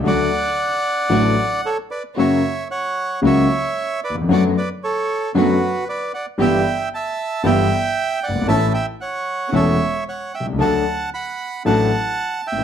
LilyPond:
<<
  \new Staff \with { instrumentName = "Bandoneon" } { \time 4/4 \key d \major \tempo 4 = 114 <d'' fis''>2. <a' cis''>8 <b' d''>8 | <cis'' e''>4 <cis'' fis''>4 <cis'' e''>4. <b' d''>8 | <d'' fis''>8 <b' d''>8 <a' cis''>4 <fis' b'>4 <b' d''>8 <d'' fis''>8 | <e'' g''>4 <e'' a''>4 <e'' g''>4. <d'' fis''>8 |
<e'' a''>8 <e'' g''>8 <cis'' fis''>4 <cis'' e''>4 <cis'' fis''>8 <e'' g''>8 | <fis'' a''>4 <fis'' b''>4 <fis'' a''>4. <e'' g''>8 | }
  \new Staff \with { instrumentName = "String section" } { \time 4/4 \key d \major <a d' fis'>8 r4. <a d' fis'>8 r4. | <ais cis' fis'>8 r4. <ais cis' fis'>8 r4. | <fis b d' fis'>8 r4. <fis b d' fis'>8 r4. | <g, b e' g'>8 r4. <g, b e' g'>8 r4. |
<cis' e' a'>8 r4. <cis' e' a'>8 r4. | <d' fis' a'>8 r4. <d' fis' a'>8 r4. | }
  \new Staff \with { instrumentName = "Grand piano" } { \clef bass \time 4/4 \key d \major <d, d fis a fis'>8 r4. <a,, a, d fis a fis'>8 r4. | <fis, cis fis ais fis'>8 r4. <cis, cis fis ais fis'>8 r4 r32 ees,32 e,32 f,32 | <fis, d fis a b fis'>8 r4. <fis, d fis a b fis'>8 r4. | <g,, g, e g b g'>8 r4. <g,, g, e g b g'>8 r4 r32 fis,,32 g,,32 gis,,32 |
<a,, a, e a cis' a'>8 r4. <e,, e, e a cis' a'>8 r4 r32 b,,32 c,32 cis,32 | <d, d fis a d' a'>8 r4. <a,, a, fis a d' a'>8 r4 r32 gis,,32 a,,32 r32 | }
>>